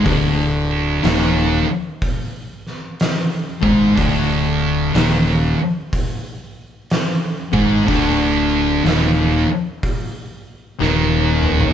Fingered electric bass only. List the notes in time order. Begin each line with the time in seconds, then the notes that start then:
0.06 D1
1.04 D#1
3.63 G#1
3.97 D1
4.94 D#1
7.54 G#1
7.89 D1
8.85 D#1
10.81 D#1